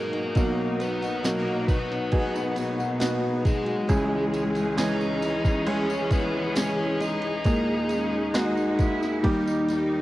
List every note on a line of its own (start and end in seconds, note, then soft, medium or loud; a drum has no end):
0.00 0.33 G#1 medium
0.00 0.33 G#2 medium
0.00 0.32 B2 medium
0.00 0.33 B2 medium
0.00 0.15 F#3 soft
0.00 0.33 F#3 medium
0.00 0.33 G#3 medium
0.00 0.77 A#3 medium
0.00 0.13 B3 soft
0.00 0.38 B3 medium
0.00 0.13 D#4 soft
0.00 0.36 D#4 medium
0.00 3.86 D#4 medium
0.00 0.36 F#4 medium
0.00 0.12 G#4 medium
0.00 0.39 G#4 medium
0.00 0.81 A#4 medium
0.13 0.35 F#3 medium
0.13 0.36 B3 medium
0.13 0.35 D#4 medium
0.13 0.36 G#4 medium
0.13 ride soft
0.35 3.86 B1 medium
0.35 1.02 B2 medium
0.35 3.86 B2 medium
0.35 3.87 B2 medium
0.35 1.20 F#3 medium
0.35 1.03 F#3 medium
0.35 3.87 F#3 medium
0.35 1.03 A#3 medium
0.35 1.20 D#4 medium
0.35 1.01 D#4 medium
0.35 1.20 F#4 medium
0.35 1.00 F#4 medium
0.35 kick loud
0.35 ride medium
0.35 tambourine medium
0.80 1.23 B3 medium
0.80 1.25 B4 loud
0.80 ride medium
0.80 tambourine soft
1.01 1.23 A#3 soft
1.01 1.23 D#4 medium
1.01 1.24 F#4 medium
1.01 ride soft
1.01 tambourine soft
1.23 1.46 B2 medium
1.23 1.46 F#3 loud
1.23 2.09 F#3 medium
1.23 1.47 A#3 medium
1.23 2.08 D#4 medium
1.23 1.46 D#4 loud
1.23 2.09 F#4 medium
1.23 1.44 F#4 medium
1.23 1.66 A#4 medium
1.23 snare loud
1.23 ride medium
1.23 tambourine medium
1.27 1.67 A#3 medium
1.45 1.70 A#3 soft
1.45 1.68 D#4 soft
1.45 1.68 F#4 medium
1.67 2.35 F#3 medium
1.67 3.43 B3 medium
1.67 2.34 D#4 medium
1.67 2.32 F#4 medium
1.67 3.45 B4 medium
1.67 kick loud
1.67 ride medium
1.67 tambourine soft
1.92 snare soft
2.12 7.42 G#3 medium
2.12 2.97 B3 medium
2.12 2.97 D#4 medium
2.12 2.97 F#4 medium
2.12 2.97 G#4 medium
2.12 kick loud
2.12 ride medium
2.33 2.56 A#3 soft
2.33 2.56 D#4 soft
2.33 2.57 F#4 medium
2.33 tambourine soft
2.56 2.79 F#3 medium
2.56 2.79 A#3 medium
2.56 2.78 D#4 medium
2.56 2.76 F#4 medium
2.56 ride medium
2.56 tambourine soft
2.78 3.00 A#3 medium
2.78 3.01 D#4 medium
2.78 3.01 F#4 medium
2.78 tambourine soft
3.00 3.23 B2 loud
3.00 3.23 F#3 loud
3.00 3.24 A#3 loud
3.00 3.84 B3 medium
3.00 3.85 D#4 medium
3.00 3.23 D#4 medium
3.00 3.85 F#4 medium
3.00 3.21 F#4 loud
3.00 snare loud
3.00 ride medium
3.00 tambourine medium
3.22 3.67 A#3 soft
3.22 3.66 D#4 medium
3.22 3.65 F#4 medium
3.45 4.75 G#3 medium
3.45 4.74 G#4 medium
3.45 kick loud
3.45 ride medium
3.45 tambourine soft
3.66 3.88 A#3 soft
3.66 3.89 D#4 medium
3.66 3.89 F#4 medium
3.66 ride soft
3.88 7.41 C#2 medium
3.88 4.55 C#3 medium
3.88 7.41 C#3 medium
3.88 4.55 E3 medium
3.88 7.42 E3 medium
3.88 4.55 G#3 medium
3.88 4.73 G#3 medium
3.88 4.73 C#4 medium
3.88 4.55 C#4 medium
3.88 7.42 C#4 medium
3.88 4.74 E4 medium
3.88 4.53 E4 medium
3.88 4.74 G#4 medium
3.88 9.20 G#4 loud
3.88 kick loud
3.88 ride medium
3.88 tambourine medium
4.34 ride medium
4.34 tambourine soft
4.55 4.77 G#3 medium
4.55 4.78 C#4 medium
4.55 4.78 E4 medium
4.55 ride soft
4.55 tambourine soft
4.77 5.22 C#3 medium
4.77 5.62 E3 medium
4.77 5.21 E3 medium
4.77 5.62 G#3 medium
4.77 5.22 G#3 medium
4.77 5.62 C#4 medium
4.77 5.23 C#4 loud
4.77 5.64 D#4 medium
4.77 5.62 G#4 loud
4.77 5.67 D#5 loud
4.77 snare loud
4.77 ride medium
4.77 tambourine medium
5.01 tambourine soft
5.22 5.89 E3 medium
5.22 5.90 G#3 medium
5.22 5.89 C#4 medium
5.22 ride medium
5.22 tambourine soft
5.45 kick loud
5.45 snare soft
5.45 tambourine soft
5.67 6.52 G#3 medium
5.67 6.52 C#4 medium
5.67 6.10 C#4 medium
5.67 6.52 E4 medium
5.67 6.52 G#4 medium
5.67 6.12 C#5 medium
5.67 ride medium
5.89 6.11 G#3 medium
5.89 6.12 C#4 medium
5.89 6.11 E4 medium
5.89 tambourine soft
6.11 6.56 E3 medium
6.11 6.56 G#3 medium
6.11 6.55 B3 medium
6.11 6.57 C#4 medium
6.11 6.57 E4 medium
6.11 6.57 B4 medium
6.11 kick loud
6.11 ride medium
6.11 tambourine soft
6.56 6.79 C#3 medium
6.56 7.41 E3 medium
6.56 6.79 E3 medium
6.56 7.41 G#3 medium
6.56 6.79 G#3 medium
6.56 7.41 C#4 medium
6.56 6.79 C#4 medium
6.56 6.99 C#4 medium
6.56 6.77 E4 medium
6.56 7.41 G#4 medium
6.56 7.01 C#5 loud
6.56 snare loud
6.56 ride medium
6.56 tambourine medium
6.78 7.24 G#3 soft
6.78 7.24 C#4 medium
6.78 7.22 E4 medium
7.01 10.02 D#4 medium
7.01 10.02 D#5 medium
7.01 ride medium
7.01 tambourine soft
7.22 7.46 C#4 medium
7.22 7.46 E4 medium
7.22 ride soft
7.26 7.45 G#3 soft
7.44 9.20 D#2 medium
7.44 9.20 A#2 medium
7.44 8.12 D#3 medium
7.44 8.30 G#3 medium
7.44 9.23 G#3 medium
7.44 8.30 A#3 medium
7.44 8.13 A#3 medium
7.44 8.31 D#4 medium
7.44 8.12 D#4 medium
7.44 8.31 G#4 medium
7.44 8.11 G#4 medium
7.44 kick loud
7.44 ride medium
7.44 tambourine medium
7.89 8.32 C#4 medium
7.89 ride medium
7.89 tambourine soft
8.12 8.34 A#3 soft
8.12 8.34 D#4 medium
8.12 8.34 G#4 medium
8.34 8.57 D#3 medium
8.34 9.19 G#3 loud
8.34 9.20 A#3 medium
8.34 8.57 A#3 medium
8.34 8.56 D#4 medium
8.34 8.80 D#4 loud
8.34 9.20 F#4 loud
8.34 8.55 G#4 medium
8.34 9.20 D#5 medium
8.34 snare loud
8.34 ride medium
8.34 tambourine medium
8.57 8.80 D#4 soft
8.57 tambourine soft
8.79 9.23 A#3 medium
8.79 9.24 E4 loud
8.79 9.25 G#4 medium
8.79 kick loud
8.79 ride medium
8.79 tambourine soft
9.03 snare soft
9.03 tambourine soft
9.23 10.02 D#2 medium
9.23 9.46 D#3 medium
9.23 10.02 D#3 medium
9.23 10.02 G3 medium
9.23 9.46 G3 medium
9.23 10.02 G3 medium
9.23 10.02 A#3 medium
9.23 9.47 A#3 medium
9.23 10.02 D#4 medium
9.23 9.68 D#4 loud
9.23 9.46 D#4 medium
9.23 10.02 G4 loud
9.23 9.44 G4 medium
9.23 10.02 G4 medium
9.23 kick medium
9.23 ride medium
9.45 9.68 A#3 medium
9.45 9.69 D#4 medium
9.45 9.69 G4 medium
9.45 tambourine soft
9.68 10.02 G3 medium
9.68 10.02 A#3 medium
9.68 10.02 D#4 loud
9.68 10.02 D#4 medium
9.68 10.02 G4 medium
9.68 ride medium
9.68 tambourine soft